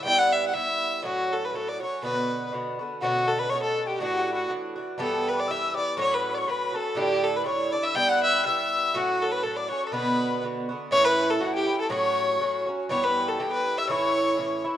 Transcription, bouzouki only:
0.04 G2 G3 B3 E4
0.53 G2 G3 B3 E4
1.03 A2 F#3 C#4 F#4
1.53 A2 F#3 C#4 F#4
1.80 F#3 C#4 F#4
2.03 B2 D3 B3 F#4
2.52 B2 D3 B3 F#4
2.79 D3 B3 F#4
3.02 B2 D3 C#4 F#4
3.51 B2 D3 C#4 F#4
4.00 A2 E3 D4 F#4
4.48 A2 E3 D4 F#4
4.76 E3 D4 F#4
4.98 G2 E3 B3 G4
5.47 G2 E3 B3 G4
5.74 E3 B3 G4
5.97 A2 F#3 C#4 F#4
6.46 A2 F#3 C#4 F#4
6.72 F#3 C#4 F#4
6.95 A2 D3 D4 E4
7.44 A2 D3 D4 E4
7.71 D3 D4 E4
7.95 G2 G3 B3 E4
8.44 G2 G3 B3 E4
8.94 A2 F#3 C#4 F#4
9.43 A2 F#3 C#4 F#4
9.70 F#3 C#4 F#4
9.92 B2 D3 B3 F#4
10.42 B2 D3 B3 F#4
10.69 D3 B3 F#4
10.91 A2 E3 C#4 E4
11.41 A2 E3 C#4 E4
11.67 E3 C#4 E4
11.90 A2 F#3 C#4 F#4
12.40 A2 F#3 C#4 F#4
12.66 F#3 C#4 F#4
12.89 G2 E3 B3 G4
13.39 G2 E3 B3 G4
13.88 A2 E3 C#4 E4
14.37 A2 E3 C#4 E4
14.64 E3 C#4 E4

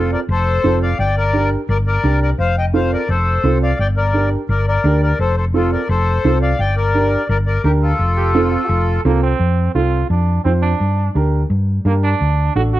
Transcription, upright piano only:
Already playing: C4 F4 A4
0.64 C4 F4 A4
1.33 D4 G4 A#4
2.04 D4 G4 A#4
2.74 C4 F4 A4
3.44 C4 F4 A4
4.14 D4 G4 A#4
4.84 D4 G4 A#4
5.54 C4 F4 A4
6.25 C4 F4 A4
6.94 D4 G4 A#4
7.64 D4 G4 A#4
8.35 C4 F4 A4
9.05 C4 F4 A4
9.75 C4 F4 A4
10.45 C4 F4 C5
11.15 D4 G4 A#4
11.85 D4 G4 A#4
12.55 D4 F#4 A4

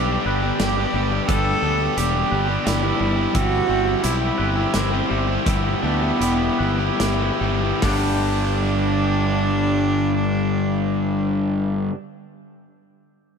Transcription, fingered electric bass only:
Already playing: B1
0.26 G1
0.60 G1
0.94 G1
1.29 G1
1.62 D2
1.97 E1
2.32 G1
2.67 G1
3.01 G1
3.35 G1
3.69 G1
4.05 B1
4.39 G1
4.75 G1
5.11 G1
5.47 G1
5.83 D2
6.20 E1
6.60 G1
7.00 G1
7.41 G1
7.84 G1

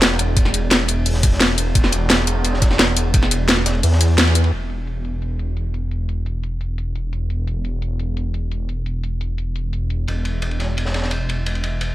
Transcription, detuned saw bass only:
Already playing: E1
0.37 E1
1.75 E1
3.14 E1
3.66 E1
3.83 E2
4.53 E1
10.08 E1

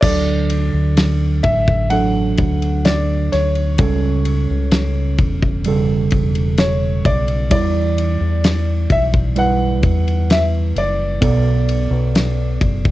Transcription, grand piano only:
0.01 D5
1.43 E5
1.90 F#5
2.85 D5
3.32 C#5
6.59 C#5
7.06 D5
7.51 D5
8.92 E5
9.39 F#5
10.32 E5
10.78 D5

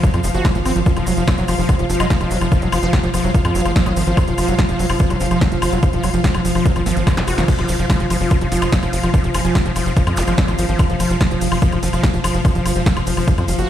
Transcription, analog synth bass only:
0.14 F2
0.24 F1
0.34 F#1
0.55 G#1
0.66 G#1
0.76 G#1
0.97 F1
1.07 F1
1.17 F1
1.38 F1
1.48 F1
1.59 F1
1.79 F1
1.90 F1
2.00 F1
2.21 F1
2.31 F1
2.41 F1
2.62 F1
2.72 F1
2.83 F1
3.03 F1
3.14 F1
3.24 F1
3.45 F2
3.55 F1
3.66 F#1
3.86 G#1
3.97 G#1
4.07 G#1
4.28 F1
4.38 F1
4.48 F1
4.69 F1
4.79 F1
4.90 F1
5.10 F1
5.21 F1
5.31 F1
5.52 F1
5.62 F1
5.72 F1
5.93 F1
6.03 F1
6.14 F1
6.34 F1
6.45 F1
6.55 F1
6.76 G#1
6.86 G#1
6.97 G#1
7.17 F1
7.28 F1
7.38 F1
7.59 F1
7.69 F1
7.79 F1
8.00 F1
8.10 F1
8.21 F1
8.41 F1
8.52 F1
8.62 F1
8.83 F1
8.93 F1
9.03 F1
9.24 F1
9.34 F1
9.45 F1
9.66 F1
9.76 F1
9.86 F1
10.07 F2
10.17 F1
10.28 F#1
10.48 G#1
10.59 G#1
10.69 G#1
10.90 F1
11.00 F1
11.10 F1
11.31 F1
11.41 F1
11.52 F1
11.72 F1
11.83 F1
11.93 F1
12.14 F1
12.24 F1
12.35 F1
12.55 F1
12.66 F1
12.76 F1
12.97 F1
13.07 F1
13.17 F1
13.38 F2
13.48 F1
13.59 F#1

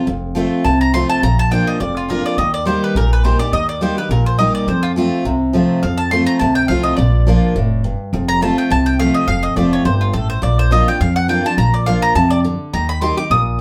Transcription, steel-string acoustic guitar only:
0.07 F2
0.35 F3 A3 C4 F4
0.65 C3
0.93 F3 A3 C4 F4
1.23 A#2
1.51 F3 A#3 D4 F4
1.80 F2
2.09 F3 A#3 D4 F4
2.38 D#3
2.65 G3 A#3 D#4 G4
2.96 A#2
3.24 G3 A#3 D#4 G4
3.39 D#4 G4
3.81 G3 A#3 D#4 G4
3.97 D#4 G4
4.11 A#2
4.38 G3 A#3 D#4 G4
4.68 F2
4.96 F3 A3 C4 F4
5.25 C3
5.53 F3 A3 C4 F4
5.83 F2
6.12 F3 A3 C4 F4
6.41 C3
6.69 F3 A3 C4 F4
6.98 A#2
7.27 F3 A#3 D4 F4
7.56 A2
7.84 G2
8.13 F2
8.41 F3 A3 C4 F4
8.70 C3
8.99 F3 A3 C4 F4
9.28 F2
9.56 F3 A3 C4 F4
9.85 G2
10.13 A2
10.42 A#2
10.71 F3 A#3 D4 F4
10.88 D4 F4
11.01 F2
11.28 F3 A#3 D4 F4
11.44 D4 F4
11.58 A#2
11.86 F3 A#3 D4 F4
12.16 C3
12.44 D3
12.74 D#3
13.01 G3 A#3 D#4 G4
13.17 D#4 G4
13.31 A#2

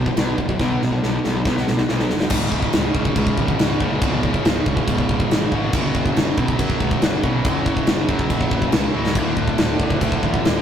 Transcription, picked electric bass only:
Already playing: B1
0.18 B1
0.38 F#1
0.60 B1
0.83 B1
1.04 B1
1.26 B1
1.46 B1
1.69 B1
1.90 B1
2.11 F#1
2.31 C#1
2.52 C#1
2.75 C#1
2.95 F#1
3.16 C#2
3.39 G#1
3.60 C#1
3.81 F#1
4.02 C#1
4.45 C#1
4.66 C#2
4.89 C#1
5.09 C#1
5.33 G#1
5.52 G#1
5.74 F#1
5.95 F#1
6.18 F#1
6.38 B1
6.60 F#2
6.81 C#2
7.04 F#1
7.24 B1
7.45 F#1
7.89 F#1
8.09 F#2
8.30 F#1
8.52 F#1
8.73 C#2
8.95 C#1
9.16 D1
9.38 D1
9.59 D1
9.80 F#1
10.02 D2
10.23 A1
10.47 D1

